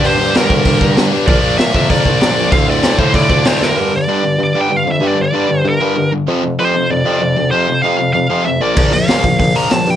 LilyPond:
<<
  \new Staff \with { instrumentName = "Lead electric guitar" } { \time 4/4 \key g \dorian \tempo 4 = 192 c''4 bes'2 r4 | d''4 e''4 d''4 d''4 | f''8 d''4 c''8 d''4 <c'' d''>8 bes'8~ | bes'8 d''4. d''8 g''8 f''8 e''8 |
d''8 d''4. bes'4. r8 | r4 c''4 d''2 | c''4 f''4 f''4 e''8 d''8~ | d''8 f''4. f''8 bes''8 a''8 g''8 | }
  \new Staff \with { instrumentName = "Distorted electric guitar" } { \clef bass \time 4/4 \key g \dorian <g, d g bes d' g'>4 <g, d g bes d' g'>2~ <g, d g bes d' g'>8 r8 | <bes, f bes d' f' bes'>4. <bes, f bes d' f' bes'>2~ <bes, f bes d' f' bes'>8 | <d, a, d a f'>4. <d, a, d a f'>2~ <d, a, d a f'>8 | <g, d g>8 <g, d>8 <g, d g>8 <g, d>8 <g, d>8 <g, d g>8 <g, d>8 <g, d>8 |
<g, d g>8 <g, d>8 <g, d g>8 <g, d>8 <g, d>8 <g, d g>8 <g, d>8 <g, d>8 | <f, c f>8 <f, c>8 <f, c f>8 <f, c>8 <f, c>8 <f, c f>8 <f, c>8 <f, c>8 | <f, c f>8 <f, c>8 <f, c f>8 <f, c>8 <f, c>8 <f, c f>8 <f, c>8 <bes, f bes>8 | <bes, f bes>8 <bes, f>8 <bes, f bes>8 <bes, f>8 <bes, f>8 <bes, f bes>8 <bes, f>8 <bes, f>8 | }
  \new Staff \with { instrumentName = "Distorted electric guitar" } { \clef bass \time 4/4 \key g \dorian <g, d g>8 <g, d g>8 <g, d g>8 <g, d g>8 <g, d g>8 <g, d g>8 <g, d g>8 <g, d g>8 | <bes, f bes>8 <bes, f bes>8 <bes, f bes>8 <bes, f bes>8 <bes, f bes>8 <bes, f bes>8 <bes, f bes>8 <bes, f bes>8 | <d, a, d>8 <d, a, d>8 <d, a, d>8 <d, a, d>8 <d, a, d>8 <d, a, d>8 <d, a, d>8 <d, a, d>8 | r1 |
r1 | r1 | r1 | r1 | }
  \new Staff \with { instrumentName = "Overdriven electric guitar" } { \clef bass \time 4/4 \key g \dorian <g, d g>4 <g, d g>2~ <g, d g>8 r8 | <bes, f bes>4. <bes, f bes>2~ <bes, f bes>8 | <d, a, d>4. <d, a, d>2~ <d, a, d>8 | <g, d g>8 <g, d>8 <g, d g>8 <g, d>8 <g, d>8 <g, d g>8 <g, d>8 <g, d>8 |
<g, d g>8 <g, d>8 <g, d g>8 <g, d>8 <g, d>8 <g, d g>8 <g, d>8 <g, d>8 | <f, c f>8 <f, c>8 <f, c f>8 <f, c>8 <f, c>8 <f, c f>8 <f, c>8 <f, c>8 | <f, c f>8 <f, c>8 <f, c f>8 <f, c>8 <f, c>8 <f, c f>8 <f, c>8 <bes, f bes>8 | <bes, f bes>8 <bes, f>8 <bes, f bes>8 <bes, f>8 <bes, f>8 <bes, f bes>8 <bes, f>8 <bes, f>8 | }
  \new Staff \with { instrumentName = "Bassoon" } { \clef bass \time 4/4 \key g \dorian g,8 g,8 g,8 d,8 d,8 g,8 g,8 g,8 | bes,,8 bes,,8 bes,8 f,8 f,8 bes,,8 bes,,8 bes,,8 | d,8 d,8 d,8 a,8 a,8 d,8 d,8 d,8 | g,4 g,4 g,8 g,8 g,8 f,8 |
g,4 g,4 g,8 g,8 g,8 r8 | f,4 f,4 f,8 f,8 f,8 d,8 | f,4 f,4 f,8 f,8 f,8 bes,,8 | bes,,4 bes,,4 bes,,8 bes,,8 bes,,8 g,8 | }
  \new DrumStaff \with { instrumentName = "Drums" } \drummode { \time 4/4 hho4 <hho sn>8 bd8 <hho bd>8 bd8 <hho sn>4 | <hho bd>4 <hho sn>8 bd8 <hho bd>8 bd8 <hho sn>4 | <hho bd>4 <hho sn>8 bd8 <hho bd>8 bd8 <hho sn>8 sn8 | r4 r4 r4 r4 |
r4 r4 r4 r4 | r4 r4 r4 r4 | r4 r4 r4 r4 | <cymc bd>8 hho8 <hho sn>8 <hho bd>8 <hho bd>8 hho8 <hho sn>8 hho8 | }
>>